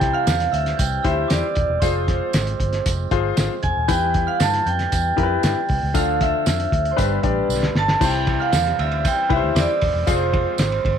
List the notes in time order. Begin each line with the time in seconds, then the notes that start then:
Already playing: C2 C3 E3 G3 C4 E4 G4 C5 G5 G6
0.01 kick, snare, closed hi-hat
0.13 F5 F6
0.27 E2, snare, closed hi-hat, tambourine
0.40 snare, closed hi-hat
0.52 D2 E5 E6, closed hi-hat
0.66 snare, closed hi-hat
0.77 C2 G5 G6, kick, closed hi-hat, tambourine
1.03 D2 E4 G4 C5 E5 E6, kick, closed hi-hat
1.28 E2 D5 D6, snare, closed hi-hat, tambourine
1.55 D#1, kick, closed hi-hat
1.69 E1
1.80 F1 F3 G#3 F4 G#4 C5 C6, kick, closed hi-hat, tambourine
2.08 kick, snare, closed hi-hat
2.33 G#1, snare, closed hi-hat, tambourine
2.47 closed hi-hat
2.59 G1, kick, closed hi-hat
2.73 snare, closed hi-hat
2.86 F1, kick, closed hi-hat, tambourine
3.11 G1 F4 G#4 C5, kick, closed hi-hat
3.37 G#1, snare, closed hi-hat, tambourine
3.63 E1 G#5 G#6, kick, closed hi-hat
3.77 D#1
3.88 E2 E3 G3 B3 E4 G4 B4 G5 G6, kick, closed hi-hat, tambourine
4.14 kick, closed hi-hat
4.27 F5 F6
4.40 G2 A5 A6, snare, closed hi-hat, tambourine
4.54 snare, closed hi-hat
4.66 F2 G5 G6, closed hi-hat
4.79 snare, closed hi-hat
4.92 E2, kick, closed hi-hat, tambourine
5.17 F2 E4 G4 A#4, kick, closed hi-hat
5.23 B4
5.43 G2, snare, closed hi-hat, tambourine
5.69 C2, kick, open hi-hat
5.83 C#2
5.94 D2 D3 F3 A3 D4 F4 A4 F5 F6, kick, closed hi-hat, tambourine
6.21 E5 E6, kick, snare, closed hi-hat
6.46 F2, snare, closed hi-hat, tambourine
6.60 closed hi-hat
6.72 D2, kick, closed hi-hat
6.85 closed hi-hat
6.91 C5 C6
6.96 G1 G2 G3 B3 D4 G4 B4 B5, kick, closed hi-hat, tambourine
7.23 A1 D4 G4 D5, kick, closed hi-hat
7.49 B1, tambourine
7.63 snare
7.75 G1 A5 A6, snare
7.88 snare
8.00 C2 C3 E3 G3 C4 E4 G4 C5 G5 G6, kick, crash, tambourine
8.27 kick, ride
8.40 F5 F6
8.52 E2, snare, ride, tambourine
8.66 snare
8.79 D2 E5 E6, ride
8.91 ride
9.05 G5 G6, kick, ride, tambourine
9.29 C2 E4 G4 B4 E5 E6, kick, ride
9.36 C5
9.43 D2
9.55 E2 D5 D6, snare, ride, tambourine
9.81 D#1, kick, open hi-hat, ride
9.94 E1
10.07 F1 F3 G#3 F4 G#4 C5 C6, kick, hi-hat pedal, ride, tambourine
10.33 kick, ride
10.58 G#1, snare, ride, tambourine
10.72 ride
10.84 G1, kick, ride